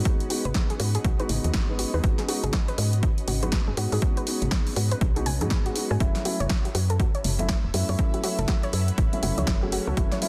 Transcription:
Already playing: C#4 F#4 B4 D#5
0.05 G#3 B3 D#4 F#4, kick, closed hi-hat
0.20 closed hi-hat
0.29 G#3 B3 D#4 F#4, open hi-hat
0.45 G#1 B4, closed hi-hat, low conga
0.54 kick, snare, closed hi-hat
0.70 G#4, closed hi-hat
0.80 G#2 F#4, open hi-hat
0.95 G#4, closed hi-hat
1.05 B1 F#4, kick, closed hi-hat
1.19 G#3 B3 D#4 F#4 B4, closed hi-hat
1.29 G#1 G#3 B3 D#4 F#4, open hi-hat, low conga
1.44 D#2, closed hi-hat, high conga
1.54 G#1, kick, snare, closed hi-hat
1.69 G#3 B3 D#4 B4
1.79 F#4, open hi-hat
1.94 D#2 G#3 B3 D#4 G#4 B4
2.03 G#1 G#3 B3 F#4, kick, closed hi-hat
2.18 G#4, snare, closed hi-hat
2.28 G#3 B3 D#4 F#4, open hi-hat
2.44 G#1 G#4, closed hi-hat, low conga
2.53 F#4, kick, snare, closed hi-hat
2.68 B4, closed hi-hat
2.78 G#2, open hi-hat
2.93 closed hi-hat
3.03 kick, closed hi-hat
3.18 closed hi-hat
3.28 G#1 F#4, open hi-hat, low conga
3.42 G#3 B3 D#4 F#4 B4, closed hi-hat, high conga
3.52 kick, snare, closed hi-hat
3.68 F#1 G#4
3.77 G#2 G#3 B3 D#4 F#4, open hi-hat
3.92 G#2 G#3 B3 D#4 F#4 G#4, open hi-hat
4.02 G#3 B3 D#4 F#4, kick, closed hi-hat
4.17 B4, closed hi-hat
4.26 G#3 B3 D#4 F#4, open hi-hat
4.42 G#1, closed hi-hat, low conga
4.51 kick, snare, closed hi-hat
4.67 open hi-hat
4.76 G#2 F#4, open hi-hat
4.91 B4, closed hi-hat
5.01 B1, kick, closed hi-hat
5.16 G#3 B3 D#4 F#4 G#4, closed hi-hat
5.26 G#5, open hi-hat, low conga
5.41 G#2 G#3 B3 D#4 F#4 G#4, closed hi-hat, high conga
5.50 G#3 D#4 G#4 B5, kick, snare, closed hi-hat
5.66 F#4, closed hi-hat
5.75 G#3 B3 D#4 F#4, open hi-hat
5.91 G#2 G#5
6.00 F#1 F#3 A3 C#4 E4, kick, closed hi-hat
6.14 F#4 E5, snare, closed hi-hat
6.25 F#3 A3 C#4 E4 F#4, open hi-hat
6.29 B4
6.40 F#1 C#5, closed hi-hat, low conga
6.49 kick, snare, closed hi-hat
6.65 F#4, closed hi-hat
6.75 F#2 F#4, open hi-hat
6.90 A4, closed hi-hat
7.00 F#4, kick, closed hi-hat
7.15 C#5, closed hi-hat
7.24 F#1, open hi-hat, low conga
7.39 F#3 A3 C#4 E4, closed hi-hat, high conga
7.49 kick, snare, closed hi-hat
7.64 E1
7.74 F#2 F#3 A3 C#4 E4 F#4, open hi-hat
7.89 F#2 F#3 A3 C#4 E4 C#5, open hi-hat
7.98 F#3 A3 C#4 E4, kick, closed hi-hat
8.14 F#4, closed hi-hat
8.23 F#3 A3 C#4 E4 F#4, open hi-hat
8.39 F#1 A4, closed hi-hat, low conga
8.48 F#4, kick, snare, closed hi-hat
8.63 C#5, closed hi-hat
8.73 F#2, open hi-hat
8.88 closed hi-hat
8.98 A1, kick, closed hi-hat
9.13 F#3 A3 C#4 E4, closed hi-hat
9.22 F#1 F#3 A3 C#4 E4 F#4, open hi-hat, low conga
9.38 C#2 C#5, closed hi-hat, high conga
9.47 F#1, kick, snare, closed hi-hat
9.60 F#3 A3 C#4 F#4 G#4 F#5
9.72 F#4, open hi-hat
9.87 C#2 F#3 A3 C#4 F#4 A4
9.97 F#1 F#3 A3 C#4 E4 F#4, kick, closed hi-hat
10.12 C#5, snare, closed hi-hat
10.21 F#3 A3 C#4 E4, open hi-hat

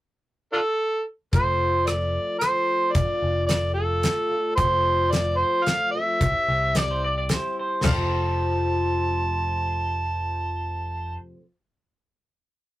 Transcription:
0.53 D4 F4 A4
1.32 F1 F2 C3 F3 A3 C4 F4 C5, kick, closed hi-hat
1.86 F3 A3 C4 F4 D5, cross-stick, closed hi-hat
2.39 F3 A3 C4 C5, cross-stick, closed hi-hat
2.44 F4
2.93 F1 F3 A3 D4 F4 D5, kick, closed hi-hat
3.22 F1
3.47 F3 A3 D5, snare, closed hi-hat
3.51 D4 F4
3.74 A4
4.02 F3 A3 D4 F4, snare, closed hi-hat
4.29 A3 D4 F4
4.56 F1 F2 C3 F3 A3 C4 F4 C5, kick, closed hi-hat
5.11 F3 A3 C4 F4 D5, snare, closed hi-hat
5.37 C5
5.64 F3 A3 F5, snare, closed hi-hat
5.69 C4
5.92 C4 F4 E5
5.96 F3 A3
6.21 C2 C3 G3 C4 E4 G4, kick, closed hi-hat
6.48 C2
6.75 G3 C4 E4 D5, snare, closed hi-hat
6.79 G4 D5
6.91 C5
7.04 D5
7.18 D5
7.29 G3 C4 E4 C5, snare, closed hi-hat
7.33 G4
7.59 C5
7.81 F1 F2 C3 D5 F5 A5, snare, floor tom, china
7.85 F3 C5
7.90 A3 C4
7.94 F4

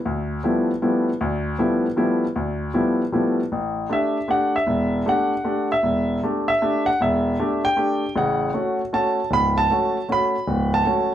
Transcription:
0.06 D2
0.44 F3 G3 A3 B3 E4
0.82 F3 G3 A3 B3 E4
1.21 D2
1.59 F3 G3 A3 B3 E4
1.96 F3 G3 A3 B3 E4
2.36 D2
2.74 F3 G3 A3 B3 E4
3.12 F3 G3 A3 B3 E4
3.52 A1
3.89 A3 D4 G4 E5
4.28 A3 D4 G4 F#5
4.56 E5
4.67 E1
5.06 A3 D4 G4 F#5
5.44 A3 D4 G4
5.72 E5
5.83 E1
6.23 A3 D4 G4
6.48 E5
6.62 A3 D4 G4
6.86 F#5
7.01 E1 E5
7.39 A3 D4 G4
7.65 G5
7.76 A3 D4 G4
8.15 A1 C#3 F#5
8.54 A3 C#4 F#4
8.93 A3 C#4 F#4 A5
9.31 C#1 B5
9.58 A5
9.71 A3 C#4 F#4
10.09 A3 C#4 F#4 B5
10.48 C#1
10.74 A5
10.85 A3 C#4 F#4

